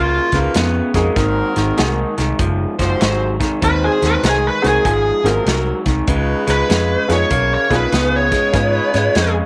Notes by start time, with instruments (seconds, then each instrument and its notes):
Already playing: fingered electric bass C#2, clean electric guitar C#3 A#3, lead electric guitar F4
0.32 fingered electric bass C#2, clean electric guitar C#3 A#3, horn section D#4 F4 B4, kick, snare, closed hi-hat
0.54 fingered electric bass F2, clean electric guitar C#3 B3, snare, closed hi-hat
0.94 fingered electric bass F2, clean electric guitar C#3 G#3, honky-tonk piano A#3 C4 D#4 F#4 G#4, kick, snare, closed hi-hat
1.16 fingered electric bass G#1, clean electric guitar G#2 D#3, horn section C4 F#4 A#4, kick, snare, closed hi-hat
1.56 fingered electric bass G#1, clean electric guitar G#2 D#3, snare, closed hi-hat
1.77 fingered electric bass C2, clean electric guitar G#2 D#3, honky-tonk piano A#3 C4 D#4 F#4 G#4, snare, closed hi-hat
2.18 fingered electric bass C2, clean electric guitar G#2 D#3, snare, closed hi-hat
2.39 fingered electric bass F#1, clean electric guitar G#2 F3, kick, closed hi-hat
2.79 fingered electric bass F#1, clean electric guitar G#2 F3, horn section C4 F#4 C5, kick, snare, closed hi-hat
3.00 fingered electric bass G#1, clean electric guitar G#2 F#3, snare, closed hi-hat
3.40 clean electric guitar G#2 D#3, kick, snare, closed hi-hat
3.61 fingered electric bass D#2, clean electric guitar G#2 D#3, horn section C4 F#4 C5, lead electric guitar B4, kick, closed hi-hat
3.85 lead electric guitar G#4
4.02 fingered electric bass D#2, clean electric guitar G#2 D#3, snare, closed hi-hat
4.07 lead electric guitar B4
4.23 fingered electric bass C2, clean electric guitar G#2 D#3, snare, closed hi-hat
4.28 lead electric guitar G#4
4.48 lead electric guitar B4
4.62 fingered electric bass C2, clean electric guitar G#2 D#3, honky-tonk piano A#3 C4 D#4 F#4 G#4, snare, closed hi-hat
4.67 lead electric guitar G#4
4.85 fingered electric bass G#1, clean electric guitar G#2 F3, lead electric guitar G#4, kick, closed hi-hat
5.24 fingered electric bass G#1, clean electric guitar G#2 F3, honky-tonk piano A#3 C4 D#4 F#4 G#4, horn section C4 F#4 A#4, snare, closed hi-hat
5.46 fingered electric bass C2, clean electric guitar G#2 F#3, snare, closed hi-hat
5.86 fingered electric bass C2, clean electric guitar G#2 D#3, kick, snare, closed hi-hat
6.07 fingered electric bass C#2, clean electric guitar C#3 G#3, horn section D#4 F4 B4, kick, closed hi-hat
6.47 fingered electric bass C#2, clean electric guitar C#3 G#3, lead electric guitar B4, snare, closed hi-hat
6.69 fingered electric bass F2, clean electric guitar C#3 G#3, snare, closed hi-hat
7.08 fingered electric bass F2, clean electric guitar C#3 G#3, honky-tonk piano B3 C#4 D#4 F4 G#4, snare, closed hi-hat
7.13 lead electric guitar C#5
7.30 fingered electric bass B1, clean electric guitar C#3 A#3, kick, closed hi-hat
7.54 lead electric guitar C#5
7.70 fingered electric bass B1, clean electric guitar C#3 A#3, honky-tonk piano B3 C#4 D#4 F4 G#4, horn section D#4 F4 B4, kick, snare, closed hi-hat
7.76 lead electric guitar B4
7.92 fingered electric bass C#2, clean electric guitar C#3 B3, snare, closed hi-hat
8.16 lead electric guitar C#5
8.31 clean electric guitar C#3 G#3, kick, snare, closed hi-hat
8.53 fingered electric bass G#2, clean electric guitar C#3 G#3, honky-tonk piano B3 C#4 D#4 F4 G#4, horn section D#4 F4 B4, kick, snare, closed hi-hat
8.94 fingered electric bass G#2, clean electric guitar C#3 G#3, snare, closed hi-hat
9.15 fingered electric bass F2, clean electric guitar C#3 G#3, snare, closed hi-hat